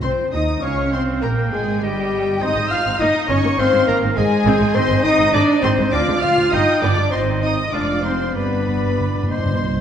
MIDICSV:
0, 0, Header, 1, 11, 480
1, 0, Start_track
1, 0, Tempo, 591133
1, 25, Time_signature, 2, 2, 24, 8
1, 5305, Tempo, 614754
1, 7861, End_track
2, 0, Start_track
2, 0, Title_t, "Violin section"
2, 0, Program_c, 0, 48
2, 19, Note_on_c, 0, 84, 100
2, 84, Note_off_c, 0, 84, 0
2, 264, Note_on_c, 0, 87, 99
2, 503, Note_on_c, 0, 85, 101
2, 507, Note_off_c, 0, 87, 0
2, 751, Note_off_c, 0, 85, 0
2, 755, Note_on_c, 0, 84, 97
2, 820, Note_off_c, 0, 84, 0
2, 990, Note_on_c, 0, 82, 97
2, 1055, Note_off_c, 0, 82, 0
2, 1237, Note_on_c, 0, 80, 94
2, 1475, Note_off_c, 0, 80, 0
2, 1481, Note_on_c, 0, 79, 104
2, 1953, Note_on_c, 0, 87, 121
2, 1960, Note_off_c, 0, 79, 0
2, 2191, Note_on_c, 0, 89, 116
2, 2196, Note_off_c, 0, 87, 0
2, 2433, Note_on_c, 0, 87, 115
2, 2435, Note_off_c, 0, 89, 0
2, 2673, Note_on_c, 0, 85, 116
2, 2674, Note_off_c, 0, 87, 0
2, 2908, Note_off_c, 0, 85, 0
2, 2909, Note_on_c, 0, 84, 127
2, 3149, Note_off_c, 0, 84, 0
2, 3150, Note_on_c, 0, 82, 116
2, 3215, Note_off_c, 0, 82, 0
2, 3384, Note_on_c, 0, 80, 119
2, 3848, Note_off_c, 0, 80, 0
2, 3851, Note_on_c, 0, 84, 127
2, 4094, Note_off_c, 0, 84, 0
2, 4096, Note_on_c, 0, 87, 123
2, 4332, Note_off_c, 0, 87, 0
2, 4334, Note_on_c, 0, 86, 124
2, 4399, Note_off_c, 0, 86, 0
2, 4570, Note_on_c, 0, 84, 117
2, 4635, Note_off_c, 0, 84, 0
2, 4806, Note_on_c, 0, 86, 124
2, 5049, Note_off_c, 0, 86, 0
2, 5051, Note_on_c, 0, 89, 120
2, 5289, Note_on_c, 0, 87, 117
2, 5298, Note_off_c, 0, 89, 0
2, 5525, Note_on_c, 0, 86, 115
2, 5530, Note_off_c, 0, 87, 0
2, 5761, Note_on_c, 0, 84, 112
2, 5766, Note_off_c, 0, 86, 0
2, 5823, Note_off_c, 0, 84, 0
2, 6004, Note_on_c, 0, 87, 110
2, 6238, Note_on_c, 0, 86, 99
2, 6239, Note_off_c, 0, 87, 0
2, 6481, Note_on_c, 0, 84, 99
2, 6483, Note_off_c, 0, 86, 0
2, 6729, Note_off_c, 0, 84, 0
2, 6731, Note_on_c, 0, 83, 100
2, 7451, Note_off_c, 0, 83, 0
2, 7472, Note_on_c, 0, 84, 98
2, 7861, Note_off_c, 0, 84, 0
2, 7861, End_track
3, 0, Start_track
3, 0, Title_t, "Oboe"
3, 0, Program_c, 1, 68
3, 508, Note_on_c, 1, 77, 88
3, 963, Note_off_c, 1, 77, 0
3, 998, Note_on_c, 1, 79, 90
3, 1471, Note_off_c, 1, 79, 0
3, 1482, Note_on_c, 1, 75, 88
3, 1961, Note_on_c, 1, 72, 86
3, 1973, Note_off_c, 1, 75, 0
3, 2451, Note_on_c, 1, 75, 100
3, 2463, Note_off_c, 1, 72, 0
3, 2912, Note_off_c, 1, 75, 0
3, 2917, Note_on_c, 1, 77, 108
3, 3392, Note_on_c, 1, 75, 104
3, 3404, Note_off_c, 1, 77, 0
3, 3635, Note_on_c, 1, 72, 94
3, 3648, Note_off_c, 1, 75, 0
3, 3864, Note_on_c, 1, 75, 113
3, 3876, Note_off_c, 1, 72, 0
3, 4812, Note_off_c, 1, 75, 0
3, 4817, Note_on_c, 1, 77, 103
3, 5291, Note_off_c, 1, 77, 0
3, 5305, Note_on_c, 1, 79, 110
3, 5602, Note_off_c, 1, 79, 0
3, 5772, Note_on_c, 1, 75, 95
3, 6214, Note_off_c, 1, 75, 0
3, 6241, Note_on_c, 1, 77, 90
3, 6719, Note_off_c, 1, 77, 0
3, 6728, Note_on_c, 1, 74, 71
3, 7450, Note_off_c, 1, 74, 0
3, 7475, Note_on_c, 1, 72, 88
3, 7861, Note_off_c, 1, 72, 0
3, 7861, End_track
4, 0, Start_track
4, 0, Title_t, "Clarinet"
4, 0, Program_c, 2, 71
4, 23, Note_on_c, 2, 72, 86
4, 134, Note_off_c, 2, 72, 0
4, 267, Note_on_c, 2, 75, 81
4, 510, Note_on_c, 2, 73, 90
4, 522, Note_off_c, 2, 75, 0
4, 758, Note_on_c, 2, 72, 85
4, 770, Note_off_c, 2, 73, 0
4, 1001, Note_on_c, 2, 70, 92
4, 1013, Note_off_c, 2, 72, 0
4, 1235, Note_off_c, 2, 70, 0
4, 1240, Note_on_c, 2, 68, 79
4, 1349, Note_off_c, 2, 68, 0
4, 1489, Note_on_c, 2, 67, 87
4, 1954, Note_off_c, 2, 67, 0
4, 1965, Note_on_c, 2, 75, 106
4, 2197, Note_off_c, 2, 75, 0
4, 2201, Note_on_c, 2, 77, 100
4, 2309, Note_off_c, 2, 77, 0
4, 2440, Note_on_c, 2, 75, 100
4, 2677, Note_on_c, 2, 73, 104
4, 2689, Note_off_c, 2, 75, 0
4, 2907, Note_off_c, 2, 73, 0
4, 2911, Note_on_c, 2, 72, 108
4, 3019, Note_off_c, 2, 72, 0
4, 3150, Note_on_c, 2, 70, 93
4, 3257, Note_off_c, 2, 70, 0
4, 3388, Note_on_c, 2, 68, 108
4, 3860, Note_on_c, 2, 72, 118
4, 3872, Note_off_c, 2, 68, 0
4, 4095, Note_on_c, 2, 75, 111
4, 4107, Note_off_c, 2, 72, 0
4, 4330, Note_off_c, 2, 75, 0
4, 4335, Note_on_c, 2, 74, 110
4, 4444, Note_off_c, 2, 74, 0
4, 4572, Note_on_c, 2, 72, 107
4, 4813, Note_on_c, 2, 74, 114
4, 4825, Note_off_c, 2, 72, 0
4, 5057, Note_off_c, 2, 74, 0
4, 5064, Note_on_c, 2, 77, 107
4, 5302, Note_on_c, 2, 75, 105
4, 5314, Note_off_c, 2, 77, 0
4, 5529, Note_on_c, 2, 74, 103
4, 5540, Note_off_c, 2, 75, 0
4, 5767, Note_on_c, 2, 72, 103
4, 5779, Note_off_c, 2, 74, 0
4, 6007, Note_on_c, 2, 75, 96
4, 6019, Note_off_c, 2, 72, 0
4, 6249, Note_on_c, 2, 74, 92
4, 6260, Note_off_c, 2, 75, 0
4, 6478, Note_off_c, 2, 74, 0
4, 6483, Note_on_c, 2, 72, 84
4, 6730, Note_on_c, 2, 71, 88
4, 6741, Note_off_c, 2, 72, 0
4, 7466, Note_off_c, 2, 71, 0
4, 7861, End_track
5, 0, Start_track
5, 0, Title_t, "Flute"
5, 0, Program_c, 3, 73
5, 24, Note_on_c, 3, 72, 83
5, 253, Note_off_c, 3, 72, 0
5, 267, Note_on_c, 3, 75, 88
5, 508, Note_off_c, 3, 75, 0
5, 512, Note_on_c, 3, 73, 83
5, 751, Note_off_c, 3, 73, 0
5, 758, Note_on_c, 3, 72, 78
5, 812, Note_off_c, 3, 72, 0
5, 996, Note_on_c, 3, 70, 87
5, 1051, Note_off_c, 3, 70, 0
5, 1237, Note_on_c, 3, 68, 84
5, 1475, Note_off_c, 3, 68, 0
5, 1479, Note_on_c, 3, 67, 84
5, 1949, Note_off_c, 3, 67, 0
5, 1955, Note_on_c, 3, 75, 102
5, 2192, Note_off_c, 3, 75, 0
5, 2204, Note_on_c, 3, 77, 111
5, 2430, Note_off_c, 3, 77, 0
5, 2435, Note_on_c, 3, 75, 101
5, 2668, Note_off_c, 3, 75, 0
5, 2673, Note_on_c, 3, 73, 98
5, 2908, Note_off_c, 3, 73, 0
5, 2913, Note_on_c, 3, 72, 115
5, 3145, Note_on_c, 3, 70, 104
5, 3157, Note_off_c, 3, 72, 0
5, 3383, Note_on_c, 3, 68, 112
5, 3395, Note_off_c, 3, 70, 0
5, 3853, Note_on_c, 3, 72, 113
5, 3865, Note_off_c, 3, 68, 0
5, 4093, Note_on_c, 3, 75, 123
5, 4105, Note_off_c, 3, 72, 0
5, 4321, Note_off_c, 3, 75, 0
5, 4325, Note_on_c, 3, 74, 108
5, 4566, Note_on_c, 3, 72, 101
5, 4578, Note_off_c, 3, 74, 0
5, 4807, Note_on_c, 3, 74, 119
5, 4820, Note_off_c, 3, 72, 0
5, 5052, Note_on_c, 3, 77, 108
5, 5064, Note_off_c, 3, 74, 0
5, 5292, Note_off_c, 3, 77, 0
5, 5296, Note_on_c, 3, 75, 106
5, 5530, Note_on_c, 3, 74, 100
5, 5542, Note_off_c, 3, 75, 0
5, 5755, Note_on_c, 3, 72, 100
5, 5767, Note_off_c, 3, 74, 0
5, 5999, Note_off_c, 3, 72, 0
5, 6004, Note_on_c, 3, 75, 101
5, 6241, Note_on_c, 3, 74, 89
5, 6252, Note_off_c, 3, 75, 0
5, 6476, Note_on_c, 3, 72, 83
5, 6488, Note_off_c, 3, 74, 0
5, 6726, Note_off_c, 3, 72, 0
5, 6731, Note_on_c, 3, 71, 88
5, 7264, Note_off_c, 3, 71, 0
5, 7461, Note_on_c, 3, 75, 82
5, 7861, Note_off_c, 3, 75, 0
5, 7861, End_track
6, 0, Start_track
6, 0, Title_t, "Violin section"
6, 0, Program_c, 4, 48
6, 22, Note_on_c, 4, 72, 81
6, 252, Note_off_c, 4, 72, 0
6, 269, Note_on_c, 4, 75, 75
6, 333, Note_off_c, 4, 75, 0
6, 509, Note_on_c, 4, 73, 88
6, 749, Note_off_c, 4, 73, 0
6, 755, Note_on_c, 4, 72, 87
6, 997, Note_on_c, 4, 70, 82
6, 998, Note_off_c, 4, 72, 0
6, 1238, Note_on_c, 4, 68, 83
6, 1240, Note_off_c, 4, 70, 0
6, 1475, Note_off_c, 4, 68, 0
6, 1484, Note_on_c, 4, 67, 91
6, 1960, Note_on_c, 4, 75, 102
6, 1961, Note_off_c, 4, 67, 0
6, 2195, Note_off_c, 4, 75, 0
6, 2198, Note_on_c, 4, 77, 97
6, 2438, Note_off_c, 4, 77, 0
6, 2440, Note_on_c, 4, 75, 106
6, 2673, Note_off_c, 4, 75, 0
6, 2675, Note_on_c, 4, 73, 105
6, 2914, Note_off_c, 4, 73, 0
6, 2914, Note_on_c, 4, 72, 107
6, 3147, Note_off_c, 4, 72, 0
6, 3153, Note_on_c, 4, 70, 97
6, 3218, Note_off_c, 4, 70, 0
6, 3392, Note_on_c, 4, 68, 113
6, 3852, Note_off_c, 4, 68, 0
6, 3858, Note_on_c, 4, 72, 110
6, 4094, Note_on_c, 4, 75, 105
6, 4097, Note_off_c, 4, 72, 0
6, 4159, Note_off_c, 4, 75, 0
6, 4330, Note_on_c, 4, 74, 112
6, 4570, Note_off_c, 4, 74, 0
6, 4575, Note_on_c, 4, 72, 109
6, 4816, Note_on_c, 4, 74, 111
6, 4818, Note_off_c, 4, 72, 0
6, 5058, Note_on_c, 4, 77, 107
6, 5059, Note_off_c, 4, 74, 0
6, 5294, Note_on_c, 4, 75, 111
6, 5301, Note_off_c, 4, 77, 0
6, 5527, Note_off_c, 4, 75, 0
6, 5531, Note_on_c, 4, 74, 110
6, 5764, Note_off_c, 4, 74, 0
6, 5770, Note_on_c, 4, 72, 95
6, 6002, Note_off_c, 4, 72, 0
6, 6008, Note_on_c, 4, 75, 90
6, 6241, Note_off_c, 4, 75, 0
6, 6241, Note_on_c, 4, 74, 99
6, 6479, Note_off_c, 4, 74, 0
6, 6483, Note_on_c, 4, 72, 90
6, 6730, Note_off_c, 4, 72, 0
6, 6734, Note_on_c, 4, 71, 86
6, 7453, Note_off_c, 4, 71, 0
6, 7472, Note_on_c, 4, 72, 87
6, 7861, Note_off_c, 4, 72, 0
6, 7861, End_track
7, 0, Start_track
7, 0, Title_t, "Cello section"
7, 0, Program_c, 5, 48
7, 19, Note_on_c, 5, 60, 76
7, 251, Note_off_c, 5, 60, 0
7, 266, Note_on_c, 5, 63, 76
7, 508, Note_off_c, 5, 63, 0
7, 508, Note_on_c, 5, 61, 90
7, 749, Note_off_c, 5, 61, 0
7, 757, Note_on_c, 5, 60, 84
7, 998, Note_on_c, 5, 58, 76
7, 999, Note_off_c, 5, 60, 0
7, 1240, Note_off_c, 5, 58, 0
7, 1240, Note_on_c, 5, 56, 82
7, 1480, Note_on_c, 5, 55, 93
7, 1481, Note_off_c, 5, 56, 0
7, 1957, Note_on_c, 5, 63, 91
7, 1959, Note_off_c, 5, 55, 0
7, 2194, Note_off_c, 5, 63, 0
7, 2197, Note_on_c, 5, 65, 99
7, 2262, Note_off_c, 5, 65, 0
7, 2437, Note_on_c, 5, 63, 111
7, 2671, Note_off_c, 5, 63, 0
7, 2674, Note_on_c, 5, 61, 100
7, 2739, Note_off_c, 5, 61, 0
7, 2913, Note_on_c, 5, 60, 96
7, 2978, Note_off_c, 5, 60, 0
7, 3151, Note_on_c, 5, 58, 102
7, 3383, Note_off_c, 5, 58, 0
7, 3384, Note_on_c, 5, 56, 116
7, 3858, Note_off_c, 5, 56, 0
7, 3860, Note_on_c, 5, 60, 98
7, 3925, Note_off_c, 5, 60, 0
7, 4092, Note_on_c, 5, 63, 108
7, 4330, Note_off_c, 5, 63, 0
7, 4331, Note_on_c, 5, 62, 118
7, 4575, Note_off_c, 5, 62, 0
7, 4575, Note_on_c, 5, 60, 106
7, 4812, Note_on_c, 5, 62, 96
7, 4813, Note_off_c, 5, 60, 0
7, 5054, Note_on_c, 5, 65, 99
7, 5057, Note_off_c, 5, 62, 0
7, 5294, Note_off_c, 5, 65, 0
7, 5295, Note_on_c, 5, 63, 108
7, 5532, Note_off_c, 5, 63, 0
7, 5532, Note_on_c, 5, 62, 96
7, 5764, Note_off_c, 5, 62, 0
7, 5768, Note_on_c, 5, 60, 88
7, 6004, Note_on_c, 5, 63, 96
7, 6005, Note_off_c, 5, 60, 0
7, 6066, Note_off_c, 5, 63, 0
7, 6240, Note_on_c, 5, 62, 98
7, 6303, Note_off_c, 5, 62, 0
7, 6486, Note_on_c, 5, 60, 87
7, 6726, Note_off_c, 5, 60, 0
7, 6729, Note_on_c, 5, 59, 74
7, 7451, Note_off_c, 5, 59, 0
7, 7861, End_track
8, 0, Start_track
8, 0, Title_t, "French horn section"
8, 0, Program_c, 6, 60
8, 19, Note_on_c, 6, 60, 87
8, 251, Note_off_c, 6, 60, 0
8, 269, Note_on_c, 6, 63, 87
8, 513, Note_on_c, 6, 61, 81
8, 514, Note_off_c, 6, 63, 0
8, 751, Note_off_c, 6, 61, 0
8, 752, Note_on_c, 6, 60, 85
8, 862, Note_off_c, 6, 60, 0
8, 987, Note_on_c, 6, 58, 88
8, 1099, Note_off_c, 6, 58, 0
8, 1237, Note_on_c, 6, 56, 77
8, 1475, Note_off_c, 6, 56, 0
8, 1481, Note_on_c, 6, 55, 90
8, 1950, Note_off_c, 6, 55, 0
8, 1962, Note_on_c, 6, 63, 107
8, 2069, Note_off_c, 6, 63, 0
8, 2208, Note_on_c, 6, 65, 102
8, 2430, Note_on_c, 6, 63, 104
8, 2439, Note_off_c, 6, 65, 0
8, 2673, Note_off_c, 6, 63, 0
8, 2675, Note_on_c, 6, 61, 100
8, 2906, Note_on_c, 6, 60, 119
8, 2913, Note_off_c, 6, 61, 0
8, 3139, Note_on_c, 6, 58, 105
8, 3147, Note_off_c, 6, 60, 0
8, 3248, Note_off_c, 6, 58, 0
8, 3382, Note_on_c, 6, 56, 105
8, 3847, Note_off_c, 6, 56, 0
8, 3855, Note_on_c, 6, 60, 119
8, 4085, Note_on_c, 6, 63, 113
8, 4096, Note_off_c, 6, 60, 0
8, 4324, Note_on_c, 6, 62, 112
8, 4331, Note_off_c, 6, 63, 0
8, 4552, Note_on_c, 6, 60, 99
8, 4567, Note_off_c, 6, 62, 0
8, 4794, Note_on_c, 6, 62, 113
8, 4801, Note_off_c, 6, 60, 0
8, 5039, Note_on_c, 6, 65, 113
8, 5048, Note_off_c, 6, 62, 0
8, 5153, Note_off_c, 6, 65, 0
8, 5282, Note_on_c, 6, 63, 102
8, 5516, Note_on_c, 6, 62, 100
8, 5521, Note_off_c, 6, 63, 0
8, 5751, Note_on_c, 6, 60, 110
8, 5761, Note_off_c, 6, 62, 0
8, 5993, Note_on_c, 6, 63, 96
8, 5997, Note_off_c, 6, 60, 0
8, 6103, Note_off_c, 6, 63, 0
8, 6236, Note_on_c, 6, 62, 93
8, 6477, Note_off_c, 6, 62, 0
8, 6479, Note_on_c, 6, 60, 82
8, 6727, Note_off_c, 6, 60, 0
8, 6729, Note_on_c, 6, 59, 91
8, 7451, Note_off_c, 6, 59, 0
8, 7861, End_track
9, 0, Start_track
9, 0, Title_t, "Viola section"
9, 0, Program_c, 7, 48
9, 24, Note_on_c, 7, 60, 87
9, 89, Note_off_c, 7, 60, 0
9, 269, Note_on_c, 7, 63, 82
9, 334, Note_off_c, 7, 63, 0
9, 514, Note_on_c, 7, 61, 91
9, 752, Note_off_c, 7, 61, 0
9, 752, Note_on_c, 7, 60, 88
9, 991, Note_on_c, 7, 58, 97
9, 996, Note_off_c, 7, 60, 0
9, 1235, Note_on_c, 7, 56, 88
9, 1237, Note_off_c, 7, 58, 0
9, 1478, Note_off_c, 7, 56, 0
9, 1482, Note_on_c, 7, 55, 94
9, 1960, Note_off_c, 7, 55, 0
9, 1961, Note_on_c, 7, 60, 92
9, 1962, Note_on_c, 7, 63, 79
9, 2009, Note_off_c, 7, 60, 0
9, 2082, Note_on_c, 7, 56, 66
9, 2130, Note_off_c, 7, 56, 0
9, 2202, Note_on_c, 7, 51, 64
9, 2250, Note_off_c, 7, 51, 0
9, 2322, Note_on_c, 7, 60, 95
9, 2369, Note_off_c, 7, 60, 0
9, 2441, Note_on_c, 7, 58, 75
9, 2489, Note_off_c, 7, 58, 0
9, 2677, Note_on_c, 7, 61, 111
9, 2724, Note_off_c, 7, 61, 0
9, 2795, Note_on_c, 7, 58, 88
9, 2843, Note_off_c, 7, 58, 0
9, 2912, Note_on_c, 7, 60, 110
9, 2960, Note_off_c, 7, 60, 0
9, 3031, Note_on_c, 7, 56, 69
9, 3079, Note_off_c, 7, 56, 0
9, 3151, Note_on_c, 7, 51, 72
9, 3199, Note_off_c, 7, 51, 0
9, 3273, Note_on_c, 7, 60, 99
9, 3320, Note_off_c, 7, 60, 0
9, 3395, Note_on_c, 7, 56, 81
9, 3441, Note_off_c, 7, 56, 0
9, 3632, Note_on_c, 7, 60, 125
9, 3678, Note_off_c, 7, 60, 0
9, 3748, Note_on_c, 7, 56, 94
9, 3794, Note_off_c, 7, 56, 0
9, 3828, Note_off_c, 7, 63, 0
9, 3867, Note_on_c, 7, 63, 95
9, 3870, Note_on_c, 7, 60, 102
9, 3916, Note_off_c, 7, 60, 0
9, 3981, Note_on_c, 7, 56, 82
9, 4028, Note_off_c, 7, 56, 0
9, 4104, Note_on_c, 7, 51, 71
9, 4151, Note_off_c, 7, 51, 0
9, 4220, Note_on_c, 7, 60, 103
9, 4268, Note_off_c, 7, 60, 0
9, 4335, Note_on_c, 7, 56, 88
9, 4384, Note_off_c, 7, 56, 0
9, 4574, Note_on_c, 7, 60, 125
9, 4623, Note_off_c, 7, 60, 0
9, 4695, Note_on_c, 7, 56, 87
9, 4744, Note_off_c, 7, 56, 0
9, 4804, Note_off_c, 7, 63, 0
9, 4812, Note_on_c, 7, 65, 96
9, 4814, Note_on_c, 7, 60, 106
9, 4863, Note_off_c, 7, 60, 0
9, 4933, Note_on_c, 7, 56, 76
9, 4982, Note_off_c, 7, 56, 0
9, 5054, Note_on_c, 7, 53, 76
9, 5103, Note_off_c, 7, 53, 0
9, 5179, Note_on_c, 7, 60, 116
9, 5227, Note_off_c, 7, 60, 0
9, 5296, Note_on_c, 7, 55, 82
9, 5344, Note_off_c, 7, 55, 0
9, 5530, Note_on_c, 7, 59, 107
9, 5578, Note_off_c, 7, 59, 0
9, 5645, Note_on_c, 7, 55, 72
9, 5693, Note_off_c, 7, 55, 0
9, 5761, Note_on_c, 7, 63, 86
9, 5764, Note_on_c, 7, 60, 81
9, 5767, Note_off_c, 7, 65, 0
9, 6209, Note_off_c, 7, 63, 0
9, 6210, Note_off_c, 7, 60, 0
9, 6237, Note_on_c, 7, 65, 80
9, 6239, Note_on_c, 7, 56, 84
9, 6481, Note_on_c, 7, 63, 75
9, 6482, Note_off_c, 7, 65, 0
9, 6544, Note_off_c, 7, 63, 0
9, 6725, Note_on_c, 7, 55, 80
9, 6725, Note_on_c, 7, 62, 76
9, 6728, Note_off_c, 7, 56, 0
9, 7528, Note_off_c, 7, 62, 0
9, 7544, Note_off_c, 7, 55, 0
9, 7861, End_track
10, 0, Start_track
10, 0, Title_t, "Timpani"
10, 0, Program_c, 8, 47
10, 6732, Note_on_c, 8, 43, 45
10, 6785, Note_off_c, 8, 43, 0
10, 6794, Note_on_c, 8, 43, 47
10, 6849, Note_off_c, 8, 43, 0
10, 6859, Note_on_c, 8, 43, 47
10, 6907, Note_off_c, 8, 43, 0
10, 6917, Note_on_c, 8, 43, 51
10, 6972, Note_off_c, 8, 43, 0
10, 6981, Note_on_c, 8, 43, 55
10, 7037, Note_off_c, 8, 43, 0
10, 7047, Note_on_c, 8, 43, 61
10, 7097, Note_off_c, 8, 43, 0
10, 7106, Note_on_c, 8, 43, 61
10, 7156, Note_off_c, 8, 43, 0
10, 7225, Note_on_c, 8, 43, 74
10, 7276, Note_off_c, 8, 43, 0
10, 7285, Note_on_c, 8, 43, 76
10, 7336, Note_off_c, 8, 43, 0
10, 7346, Note_on_c, 8, 43, 82
10, 7402, Note_off_c, 8, 43, 0
10, 7411, Note_on_c, 8, 43, 93
10, 7460, Note_off_c, 8, 43, 0
10, 7470, Note_on_c, 8, 43, 99
10, 7521, Note_off_c, 8, 43, 0
10, 7530, Note_on_c, 8, 43, 110
10, 7578, Note_off_c, 8, 43, 0
10, 7587, Note_on_c, 8, 43, 101
10, 7640, Note_off_c, 8, 43, 0
10, 7649, Note_on_c, 8, 43, 107
10, 7703, Note_off_c, 8, 43, 0
10, 7861, End_track
11, 0, Start_track
11, 0, Title_t, "Double bass section"
11, 0, Program_c, 10, 48
11, 17, Note_on_c, 10, 36, 91
11, 82, Note_off_c, 10, 36, 0
11, 264, Note_on_c, 10, 39, 87
11, 507, Note_off_c, 10, 39, 0
11, 508, Note_on_c, 10, 37, 95
11, 748, Note_off_c, 10, 37, 0
11, 750, Note_on_c, 10, 36, 86
11, 992, Note_on_c, 10, 34, 89
11, 995, Note_off_c, 10, 36, 0
11, 1232, Note_on_c, 10, 32, 91
11, 1237, Note_off_c, 10, 34, 0
11, 1472, Note_off_c, 10, 32, 0
11, 1476, Note_on_c, 10, 31, 94
11, 1957, Note_off_c, 10, 31, 0
11, 1958, Note_on_c, 10, 32, 102
11, 2006, Note_off_c, 10, 32, 0
11, 2077, Note_on_c, 10, 32, 77
11, 2126, Note_off_c, 10, 32, 0
11, 2197, Note_on_c, 10, 32, 72
11, 2246, Note_off_c, 10, 32, 0
11, 2317, Note_on_c, 10, 32, 114
11, 2365, Note_off_c, 10, 32, 0
11, 2435, Note_on_c, 10, 31, 74
11, 2484, Note_off_c, 10, 31, 0
11, 2675, Note_on_c, 10, 31, 105
11, 2723, Note_off_c, 10, 31, 0
11, 2790, Note_on_c, 10, 31, 78
11, 2839, Note_off_c, 10, 31, 0
11, 2910, Note_on_c, 10, 32, 104
11, 2959, Note_off_c, 10, 32, 0
11, 3031, Note_on_c, 10, 32, 81
11, 3079, Note_off_c, 10, 32, 0
11, 3151, Note_on_c, 10, 32, 81
11, 3198, Note_off_c, 10, 32, 0
11, 3267, Note_on_c, 10, 32, 119
11, 3315, Note_off_c, 10, 32, 0
11, 3386, Note_on_c, 10, 32, 82
11, 3434, Note_off_c, 10, 32, 0
11, 3620, Note_on_c, 10, 32, 114
11, 3667, Note_off_c, 10, 32, 0
11, 3738, Note_on_c, 10, 32, 85
11, 3786, Note_off_c, 10, 32, 0
11, 3855, Note_on_c, 10, 32, 114
11, 3904, Note_off_c, 10, 32, 0
11, 3973, Note_on_c, 10, 32, 82
11, 4022, Note_off_c, 10, 32, 0
11, 4096, Note_on_c, 10, 32, 78
11, 4144, Note_off_c, 10, 32, 0
11, 4211, Note_on_c, 10, 32, 120
11, 4260, Note_off_c, 10, 32, 0
11, 4331, Note_on_c, 10, 32, 81
11, 4380, Note_off_c, 10, 32, 0
11, 4572, Note_on_c, 10, 32, 106
11, 4622, Note_off_c, 10, 32, 0
11, 4692, Note_on_c, 10, 32, 78
11, 4741, Note_off_c, 10, 32, 0
11, 4811, Note_on_c, 10, 38, 119
11, 4860, Note_off_c, 10, 38, 0
11, 4932, Note_on_c, 10, 38, 82
11, 4982, Note_off_c, 10, 38, 0
11, 5052, Note_on_c, 10, 38, 80
11, 5102, Note_off_c, 10, 38, 0
11, 5173, Note_on_c, 10, 38, 108
11, 5223, Note_off_c, 10, 38, 0
11, 5297, Note_on_c, 10, 31, 78
11, 5345, Note_off_c, 10, 31, 0
11, 5531, Note_on_c, 10, 31, 107
11, 5579, Note_off_c, 10, 31, 0
11, 5644, Note_on_c, 10, 31, 76
11, 5693, Note_off_c, 10, 31, 0
11, 5763, Note_on_c, 10, 32, 89
11, 6210, Note_off_c, 10, 32, 0
11, 6239, Note_on_c, 10, 29, 89
11, 6719, Note_off_c, 10, 29, 0
11, 6726, Note_on_c, 10, 31, 77
11, 7545, Note_off_c, 10, 31, 0
11, 7706, Note_on_c, 10, 36, 92
11, 7861, Note_off_c, 10, 36, 0
11, 7861, End_track
0, 0, End_of_file